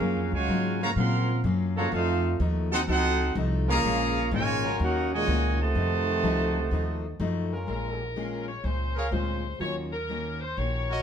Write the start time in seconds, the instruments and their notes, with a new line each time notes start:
Already playing: trombone section A#3 C#4 G#4, trumpet section C#4 F#4 A#4 F5
0.00 upright bass F#2, steel-string acoustic guitar F#3 A#3 C#4 F4
0.16 upright bass F2
0.32 upright bass C#2, trombone section C#3 F#3 G#3, trumpet section F#4 C#5 F5 G#5
0.48 upright bass G#2, steel-string acoustic guitar F#3 A#3 C#4 F4
0.82 trombone section C#3 F3 A#3, trumpet section F#4 C#5 F5 A#5
0.96 upright bass A#2, trombone section C#3 F3 C4, steel-string acoustic guitar F#3 A#3 C#4 F4, trumpet section A#4 F5 F#5 C6
1.44 upright bass F#2, steel-string acoustic guitar F#3 A#3 C#4 F4
1.75 trombone section C#3 F3 F#3 A#3 D#4 F4 A4, trumpet section F#4 C#5 F5 A#5
1.92 upright bass F2, steel-string acoustic guitar F3 A3 D#4 F#4, trombone section A3 C4 F4, trumpet section D#4 A4 C5 F5
2.40 upright bass D#2, steel-string acoustic guitar F3 A3 D#4 F#4
2.71 trombone section C4 D#4 F#4, trumpet section D#4 A4 C5 F#5
2.88 upright bass C#2, steel-string acoustic guitar F3 A3 D#4 F#4, trombone section C4 D#4 F#4, trumpet section D#4 A4 C5 F#5
3.35 upright bass C2, steel-string acoustic guitar F3 A3 D#4 F#4
3.68 trombone section C#3 F3 G#3 A#3 C#4 F4 A#4, trumpet section G#4 C#5 F5 A#5
3.84 upright bass A#1, steel-string acoustic guitar A#2 G#3 C#4 F4
4.31 upright bass G#1, steel-string acoustic guitar A#2 G#3 C#4 F4, trombone section C#3 F3 G#3, trumpet section F4 A#4 C#5 G#5
4.63 trombone section F#3 C#4 D#4 A#4
4.79 upright bass D#2, steel-string acoustic guitar D#3 A#3 C#4 F#4, trombone section A#3 C#4 F#4, trumpet section C#5
4.83 trumpet section D#4 A#4 F#5
5.13 trombone section A#2 C#3 G#3, trumpet section F#4 C#5 D#5 G#5
5.27 upright bass C#2, steel-string acoustic guitar D#3 A#3 C#4 F#4
5.61 trombone section C3 D#3 A3, trumpet section F#4 C5 D#5 A5
5.75 upright bass F2, steel-string acoustic guitar F3 A3 D#4 F#4
6.23 upright bass C#2, steel-string acoustic guitar F3 A3 D#4 F#4
6.71 upright bass D#2, steel-string acoustic guitar F3 A3 D#4 F#4
7.20 upright bass F#2, steel-string acoustic guitar F3 A3 D#4 F#4
7.52 trombone section G#3 C#4 F4 A#4
7.67 upright bass A#1, steel-string acoustic guitar A#2 G#3 C#4 F4, saxophone section A#4
8.16 steel-string acoustic guitar A#2 G#3 C#4 F4
8.48 saxophone section C#5
8.64 upright bass C#2, steel-string acoustic guitar A#2 G#3 C#4 F4, saxophone section C5
8.95 trumpet section G#4 A#4 C#5 F5, saxophone section A#4
9.11 upright bass D2, steel-string acoustic guitar A#2 G#3 C#4 F4, grand piano G#3 C4 C#4 F4, saxophone section C5
9.59 upright bass D#2, steel-string acoustic guitar D#3 A#3 C#4 F#4, grand piano F#3 A#3 C#4 F4, saxophone section C#5
9.93 saxophone section A#4
10.09 steel-string acoustic guitar D#3 A#3 C#4 F#4
10.41 saxophone section C5
10.57 upright bass A#1, steel-string acoustic guitar D#3 A#3 C#4 F#4, saxophone section C#5
10.89 trumpet section F#4 A#4 C#5 D#5